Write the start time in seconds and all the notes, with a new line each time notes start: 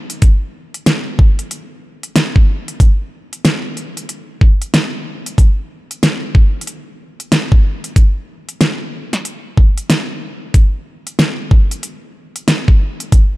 0.10 closed hi-hat
0.22 kick, closed hi-hat
0.74 closed hi-hat
0.86 snare, closed hi-hat
1.19 kick
1.39 closed hi-hat
1.51 closed hi-hat
2.03 closed hi-hat
2.16 snare, closed hi-hat
2.36 kick
2.68 closed hi-hat
2.80 kick, closed hi-hat
3.33 closed hi-hat
3.45 snare, closed hi-hat
3.77 closed hi-hat
3.97 closed hi-hat
4.09 closed hi-hat
4.41 kick
4.62 closed hi-hat
4.74 snare, closed hi-hat
5.26 closed hi-hat
5.38 kick, closed hi-hat
5.91 closed hi-hat
6.03 snare, closed hi-hat
6.35 kick
6.61 closed hi-hat
6.67 closed hi-hat
7.20 closed hi-hat
7.32 snare, closed hi-hat
7.52 kick
7.84 closed hi-hat
7.96 kick, closed hi-hat
8.49 closed hi-hat
8.61 snare, closed hi-hat
9.13 snare, closed hi-hat
9.25 closed hi-hat
9.57 kick
9.78 closed hi-hat
9.90 snare, closed hi-hat
10.54 kick, closed hi-hat
11.07 closed hi-hat
11.19 snare, closed hi-hat
11.51 kick
11.71 closed hi-hat
11.83 closed hi-hat
12.36 closed hi-hat
12.48 snare, closed hi-hat
12.68 kick
13.00 closed hi-hat
13.12 kick, closed hi-hat